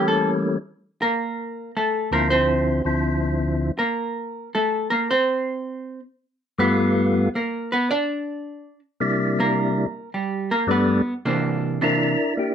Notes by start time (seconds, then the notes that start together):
Already playing: E3 G3 A3 A#3 C#4
0.08 A4
1.02 A#3 A#4
1.77 A3 A4
2.11 D2 D3 F3 A#3 C4 E4 A#4
2.30 C4 C5
2.85 D2 D3 F3 C4 E4
3.79 A#3 A#4
4.55 A3 A4
4.90 A#3 A#4
5.11 C4 C5
6.58 G2 G3 A3 B3 F4 B4
7.35 A#3 A#4
7.72 B3 B4
7.91 D4 D5
9.00 C3 G3 A#3 D4 E4
9.40 A#3 A#4
10.14 G3 G4
10.51 A#3 A#4
10.67 G2 G3 A3 B3 D4
10.71 B3 B4
11.25 C3 E3 A#3 D4
11.81 C3 E3 A#3 D4 E4 A#4
12.37 A#3 E4 G4